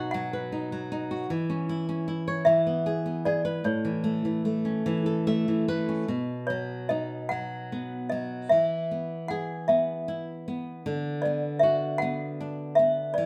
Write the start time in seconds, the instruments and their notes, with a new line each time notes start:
Already playing: nylon-string guitar B2 F#3 D#4 F#4
0.11 nylon-string guitar F#3, toy piano F#5
0.33 nylon-string guitar B4
0.52 nylon-string guitar D#4
0.72 nylon-string guitar F#3
0.92 nylon-string guitar D#4
1.11 nylon-string guitar F#4
1.30 nylon-string guitar E3
1.50 nylon-string guitar C#4
1.69 nylon-string guitar E4
1.89 nylon-string guitar C#4
2.08 nylon-string guitar E4
2.28 nylon-string guitar C#5
2.45 nylon-string guitar E3, toy piano E5
2.67 nylon-string guitar B3
2.86 nylon-string guitar G#4
3.06 nylon-string guitar B3
3.25 nylon-string guitar G#4, toy piano D5
3.45 nylon-string guitar B4
3.64 nylon-string guitar A2, toy piano C#5
3.85 nylon-string guitar E3
4.04 nylon-string guitar A3
4.25 nylon-string guitar E3
4.45 nylon-string guitar A3
4.65 nylon-string guitar C#4
4.86 nylon-string guitar E3
5.06 nylon-string guitar A4
5.27 nylon-string guitar A3 E5
5.48 nylon-string guitar E3
5.68 nylon-string guitar A3 B4
5.89 nylon-string guitar C#4
6.08 nylon-string guitar B2
6.47 nylon-string guitar F#3, toy piano C#5
6.89 nylon-string guitar D#4, toy piano D#5
7.29 nylon-string guitar F#3, toy piano F#5
7.72 nylon-string guitar B3
8.10 nylon-string guitar F#3, toy piano D#5
8.49 nylon-string guitar E3, toy piano E5
8.91 nylon-string guitar B3
9.28 nylon-string guitar G#4, toy piano F#5
9.68 nylon-string guitar B3, toy piano E5
10.08 nylon-string guitar E4
10.48 nylon-string guitar B3
10.86 nylon-string guitar D3
11.22 nylon-string guitar B3, toy piano D5
11.59 nylon-string guitar F#4, toy piano E5
11.98 nylon-string guitar B3, toy piano F#5
12.41 nylon-string guitar D4
12.75 nylon-string guitar B3, toy piano E5
13.14 nylon-string guitar E3, toy piano D5